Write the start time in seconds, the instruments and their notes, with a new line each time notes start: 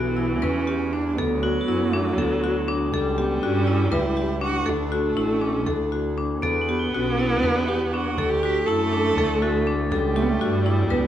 Already playing: double bass B1, viola E3, cello B3, crotales D7
0.17 marimba E4
0.42 double bass E2, cello C#4, marimba B4, frame drum
0.67 marimba G4
0.92 cello D4, marimba D4
1.12 viola G3
1.17 double bass D2, viola F#3, cello B3, marimba A4, frame drum
1.43 marimba F#4, crotales F#7, frame drum
1.54 cello B3
1.61 crotales A7
1.68 double bass F#2, marimba E4
1.91 cello A3, marimba D4, frame drum
2.17 double bass D2, cello B3, marimba A4, crotales E7, frame drum
2.44 marimba F#4
2.68 marimba D4
2.93 double bass C#2, viola G3, marimba A4, frame drum
3.18 cello B3, marimba G4
3.42 double bass G2, cello C#4, marimba F#4
3.67 marimba E4
3.92 double bass C#2, cello E4, marimba B4, frame drum
4.17 marimba G4
4.41 marimba D4, cello F#4
4.65 double bass D2, viola A3, cello D4, marimba A4, frame drum
4.92 marimba F#4
5.06 cello D4
5.17 double bass A1, marimba E4
5.41 cello C#4, marimba D4
5.66 double bass D2, cello D4, marimba A4, frame drum
5.92 marimba F#4
6.18 marimba D4
6.42 double bass E2, viola B3, marimba A4, crotales D7, frame drum
6.61 crotales F#7
6.68 cello B3, marimba G4
6.79 crotales G7
6.93 double bass B1, cello C#4, marimba F#4
7.19 marimba E4, frame drum
7.42 double bass E2, cello D4, marimba B4, frame drum
7.67 cello G4, marimba G4
7.85 cello G4
7.93 marimba D4, cello F#4
8.18 double bass D2, viola A3, marimba A4, frame drum
8.29 cello G4
8.43 marimba F#4, crotales B6
8.66 double bass F#2, marimba E4, cello A4
8.93 marimba D4
9.17 double bass D2, marimba A4, frame drum
9.42 marimba F#4, crotales A6
9.67 marimba D4
9.91 double bass C#2, viola G3, marimba A4, frame drum
10.15 cello A3, marimba G4
10.22 cello B3
10.29 cello A3
10.41 double bass G2, marimba F#4
10.66 marimba E4
10.90 double bass C#2, cello B3, marimba B4, frame drum